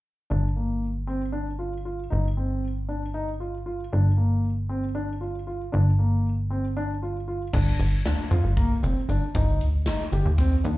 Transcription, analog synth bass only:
0, 0, Header, 1, 2, 480
1, 0, Start_track
1, 0, Key_signature, -2, "minor"
1, 0, Tempo, 516796
1, 282, Time_signature, 7, 3, 24, 8
1, 10010, End_track
2, 0, Start_track
2, 0, Title_t, "Analog synth bass"
2, 0, Program_c, 0, 38
2, 288, Note_on_c, 0, 31, 75
2, 1932, Note_off_c, 0, 31, 0
2, 1971, Note_on_c, 0, 31, 72
2, 3614, Note_off_c, 0, 31, 0
2, 3651, Note_on_c, 0, 31, 68
2, 5294, Note_off_c, 0, 31, 0
2, 5329, Note_on_c, 0, 31, 81
2, 6972, Note_off_c, 0, 31, 0
2, 7003, Note_on_c, 0, 31, 101
2, 7196, Note_off_c, 0, 31, 0
2, 7241, Note_on_c, 0, 31, 77
2, 7472, Note_on_c, 0, 38, 83
2, 7486, Note_off_c, 0, 31, 0
2, 7573, Note_off_c, 0, 38, 0
2, 7719, Note_on_c, 0, 41, 79
2, 7817, Note_off_c, 0, 41, 0
2, 7838, Note_on_c, 0, 31, 70
2, 8131, Note_off_c, 0, 31, 0
2, 8202, Note_on_c, 0, 29, 106
2, 8299, Note_off_c, 0, 29, 0
2, 8440, Note_on_c, 0, 31, 79
2, 8538, Note_off_c, 0, 31, 0
2, 8688, Note_on_c, 0, 31, 100
2, 8923, Note_on_c, 0, 38, 80
2, 8937, Note_off_c, 0, 31, 0
2, 9168, Note_on_c, 0, 31, 84
2, 9182, Note_off_c, 0, 38, 0
2, 9263, Note_off_c, 0, 31, 0
2, 9403, Note_on_c, 0, 31, 92
2, 9500, Note_off_c, 0, 31, 0
2, 9524, Note_on_c, 0, 39, 79
2, 9815, Note_off_c, 0, 39, 0
2, 9888, Note_on_c, 0, 39, 84
2, 10010, Note_off_c, 0, 39, 0
2, 10010, End_track
0, 0, End_of_file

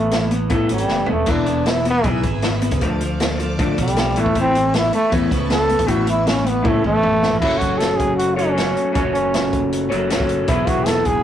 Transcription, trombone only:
0, 0, Header, 1, 2, 480
1, 0, Start_track
1, 0, Key_signature, 3, "major"
1, 0, Tempo, 383387
1, 1608, Time_signature, 4, 2, 24, 8
1, 14062, End_track
2, 0, Start_track
2, 0, Title_t, "Trombone"
2, 0, Program_c, 0, 57
2, 0, Note_on_c, 0, 57, 107
2, 381, Note_off_c, 0, 57, 0
2, 900, Note_on_c, 0, 55, 84
2, 1393, Note_on_c, 0, 57, 84
2, 1412, Note_off_c, 0, 55, 0
2, 1641, Note_on_c, 0, 62, 87
2, 1660, Note_off_c, 0, 57, 0
2, 2127, Note_on_c, 0, 64, 79
2, 2145, Note_off_c, 0, 62, 0
2, 2341, Note_off_c, 0, 64, 0
2, 2382, Note_on_c, 0, 59, 101
2, 2589, Note_off_c, 0, 59, 0
2, 4772, Note_on_c, 0, 55, 87
2, 5218, Note_off_c, 0, 55, 0
2, 5268, Note_on_c, 0, 57, 96
2, 5473, Note_off_c, 0, 57, 0
2, 5513, Note_on_c, 0, 60, 100
2, 5949, Note_off_c, 0, 60, 0
2, 5964, Note_on_c, 0, 64, 92
2, 6181, Note_off_c, 0, 64, 0
2, 6196, Note_on_c, 0, 57, 107
2, 6416, Note_off_c, 0, 57, 0
2, 6921, Note_on_c, 0, 69, 99
2, 7388, Note_on_c, 0, 66, 84
2, 7407, Note_off_c, 0, 69, 0
2, 7612, Note_off_c, 0, 66, 0
2, 7634, Note_on_c, 0, 64, 89
2, 7867, Note_on_c, 0, 61, 86
2, 7886, Note_off_c, 0, 64, 0
2, 8120, Note_on_c, 0, 59, 93
2, 8139, Note_off_c, 0, 61, 0
2, 8354, Note_on_c, 0, 57, 87
2, 8373, Note_off_c, 0, 59, 0
2, 8575, Note_off_c, 0, 57, 0
2, 8596, Note_on_c, 0, 57, 109
2, 9260, Note_off_c, 0, 57, 0
2, 9267, Note_on_c, 0, 64, 96
2, 9484, Note_on_c, 0, 66, 88
2, 9503, Note_off_c, 0, 64, 0
2, 9740, Note_on_c, 0, 69, 97
2, 9759, Note_off_c, 0, 66, 0
2, 9974, Note_on_c, 0, 68, 103
2, 9992, Note_off_c, 0, 69, 0
2, 10214, Note_off_c, 0, 68, 0
2, 10222, Note_on_c, 0, 66, 86
2, 10453, Note_on_c, 0, 61, 81
2, 10472, Note_off_c, 0, 66, 0
2, 11189, Note_off_c, 0, 61, 0
2, 11196, Note_on_c, 0, 61, 80
2, 11307, Note_off_c, 0, 61, 0
2, 11430, Note_on_c, 0, 61, 83
2, 12110, Note_off_c, 0, 61, 0
2, 13124, Note_on_c, 0, 64, 95
2, 13373, Note_on_c, 0, 66, 97
2, 13392, Note_off_c, 0, 64, 0
2, 13602, Note_on_c, 0, 69, 96
2, 13621, Note_off_c, 0, 66, 0
2, 13852, Note_on_c, 0, 68, 110
2, 13871, Note_off_c, 0, 69, 0
2, 14062, Note_off_c, 0, 68, 0
2, 14062, End_track
0, 0, End_of_file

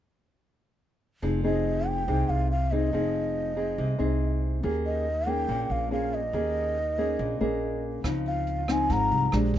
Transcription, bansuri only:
0, 0, Header, 1, 2, 480
1, 0, Start_track
1, 0, Key_signature, -4, "minor"
1, 0, Tempo, 426439
1, 1374, Time_signature, 4, 2, 24, 8
1, 10793, End_track
2, 0, Start_track
2, 0, Title_t, "Bansuri"
2, 0, Program_c, 0, 73
2, 1632, Note_on_c, 0, 75, 79
2, 2105, Note_on_c, 0, 79, 90
2, 2121, Note_off_c, 0, 75, 0
2, 2582, Note_on_c, 0, 77, 83
2, 2599, Note_off_c, 0, 79, 0
2, 2818, Note_off_c, 0, 77, 0
2, 2828, Note_on_c, 0, 77, 85
2, 3056, Note_on_c, 0, 75, 71
2, 3073, Note_off_c, 0, 77, 0
2, 4975, Note_off_c, 0, 75, 0
2, 5469, Note_on_c, 0, 75, 79
2, 5951, Note_on_c, 0, 79, 95
2, 5968, Note_off_c, 0, 75, 0
2, 6430, Note_on_c, 0, 77, 85
2, 6447, Note_off_c, 0, 79, 0
2, 6662, Note_off_c, 0, 77, 0
2, 6669, Note_on_c, 0, 77, 77
2, 6915, Note_on_c, 0, 75, 79
2, 6931, Note_off_c, 0, 77, 0
2, 8826, Note_off_c, 0, 75, 0
2, 9318, Note_on_c, 0, 77, 81
2, 9806, Note_on_c, 0, 80, 82
2, 9823, Note_off_c, 0, 77, 0
2, 10038, Note_on_c, 0, 82, 95
2, 10055, Note_off_c, 0, 80, 0
2, 10509, Note_off_c, 0, 82, 0
2, 10793, End_track
0, 0, End_of_file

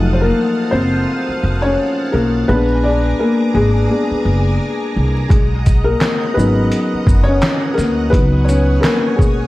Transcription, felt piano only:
0, 0, Header, 1, 2, 480
1, 0, Start_track
1, 0, Tempo, 705882
1, 1688, Time_signature, 4, 2, 24, 8
1, 6440, End_track
2, 0, Start_track
2, 0, Title_t, "Felt piano"
2, 0, Program_c, 0, 0
2, 0, Control_c, 0, 64, 127
2, 0, Note_on_c, 0, 53, 53
2, 0, Note_on_c, 0, 54, 54
2, 0, Note_on_c, 0, 57, 62
2, 0, Note_on_c, 0, 63, 62
2, 0, Note_on_c, 0, 69, 78
2, 77, Note_off_c, 0, 57, 0
2, 89, Note_on_c, 0, 72, 68
2, 142, Note_on_c, 0, 70, 95
2, 145, Note_off_c, 0, 72, 0
2, 158, Note_on_c, 0, 58, 80
2, 462, Note_off_c, 0, 70, 0
2, 470, Note_off_c, 0, 58, 0
2, 483, Note_on_c, 0, 72, 103
2, 499, Note_on_c, 0, 60, 69
2, 1085, Note_off_c, 0, 60, 0
2, 1102, Note_on_c, 0, 73, 112
2, 1117, Note_on_c, 0, 61, 72
2, 1123, Note_off_c, 0, 72, 0
2, 1430, Note_off_c, 0, 61, 0
2, 1443, Note_on_c, 0, 70, 95
2, 1456, Note_off_c, 0, 73, 0
2, 1457, Note_on_c, 0, 58, 73
2, 1663, Note_off_c, 0, 54, 0
2, 1665, Note_off_c, 0, 53, 0
2, 1668, Note_off_c, 0, 63, 0
2, 1676, Note_off_c, 0, 58, 0
2, 1687, Note_on_c, 0, 71, 95
2, 1688, Note_on_c, 0, 56, 47
2, 1693, Note_off_c, 0, 70, 0
2, 1694, Note_on_c, 0, 59, 72
2, 1697, Control_c, 0, 64, 0
2, 1697, Note_on_c, 0, 62, 54
2, 1700, Note_off_c, 0, 69, 0
2, 1831, Control_c, 0, 64, 127
2, 1911, Note_off_c, 0, 71, 0
2, 1917, Note_off_c, 0, 59, 0
2, 1927, Note_off_c, 0, 62, 0
2, 1928, Note_on_c, 0, 74, 94
2, 1937, Note_on_c, 0, 62, 75
2, 2021, Note_off_c, 0, 56, 0
2, 2156, Note_off_c, 0, 62, 0
2, 2171, Note_on_c, 0, 70, 89
2, 2175, Note_off_c, 0, 74, 0
2, 2181, Note_on_c, 0, 58, 73
2, 2398, Note_off_c, 0, 58, 0
2, 2407, Note_on_c, 0, 68, 80
2, 2417, Note_off_c, 0, 70, 0
2, 2418, Note_on_c, 0, 56, 62
2, 2642, Note_off_c, 0, 56, 0
2, 2652, Note_on_c, 0, 56, 49
2, 2654, Note_on_c, 0, 59, 44
2, 2657, Note_on_c, 0, 62, 52
2, 2866, Note_off_c, 0, 56, 0
2, 2867, Note_off_c, 0, 59, 0
2, 2869, Note_off_c, 0, 62, 0
2, 3101, Note_off_c, 0, 68, 0
2, 3598, Note_on_c, 0, 68, 77
2, 3611, Note_on_c, 0, 56, 62
2, 3616, Control_c, 0, 64, 0
2, 3748, Control_c, 0, 64, 127
2, 3962, Note_off_c, 0, 56, 0
2, 3974, Note_on_c, 0, 70, 106
2, 3993, Note_off_c, 0, 68, 0
2, 3996, Note_on_c, 0, 58, 71
2, 4309, Note_off_c, 0, 58, 0
2, 4312, Note_on_c, 0, 71, 94
2, 4325, Note_on_c, 0, 54, 51
2, 4331, Note_on_c, 0, 61, 42
2, 4332, Note_off_c, 0, 70, 0
2, 4334, Note_on_c, 0, 63, 61
2, 4335, Note_on_c, 0, 59, 74
2, 4920, Note_on_c, 0, 73, 115
2, 4923, Note_off_c, 0, 59, 0
2, 4943, Note_off_c, 0, 61, 0
2, 4953, Note_on_c, 0, 61, 75
2, 4957, Note_off_c, 0, 71, 0
2, 5250, Note_off_c, 0, 73, 0
2, 5263, Note_on_c, 0, 70, 97
2, 5268, Note_off_c, 0, 61, 0
2, 5296, Note_on_c, 0, 58, 75
2, 5500, Note_off_c, 0, 54, 0
2, 5504, Note_off_c, 0, 63, 0
2, 5509, Note_on_c, 0, 71, 94
2, 5516, Note_off_c, 0, 58, 0
2, 5523, Note_off_c, 0, 70, 0
2, 5527, Note_on_c, 0, 54, 54
2, 5531, Note_on_c, 0, 59, 73
2, 5535, Note_on_c, 0, 63, 56
2, 5537, Control_c, 0, 64, 0
2, 5639, Control_c, 0, 64, 127
2, 5741, Note_off_c, 0, 71, 0
2, 5743, Note_on_c, 0, 73, 94
2, 5757, Note_off_c, 0, 59, 0
2, 5775, Note_on_c, 0, 61, 71
2, 5987, Note_on_c, 0, 70, 89
2, 5995, Note_off_c, 0, 61, 0
2, 6003, Note_off_c, 0, 73, 0
2, 6016, Note_on_c, 0, 58, 74
2, 6229, Note_on_c, 0, 68, 86
2, 6235, Note_off_c, 0, 58, 0
2, 6245, Note_off_c, 0, 70, 0
2, 6254, Note_on_c, 0, 56, 57
2, 6440, Note_off_c, 0, 54, 0
2, 6440, Note_off_c, 0, 56, 0
2, 6440, Note_off_c, 0, 63, 0
2, 6440, Note_off_c, 0, 68, 0
2, 6440, End_track
0, 0, End_of_file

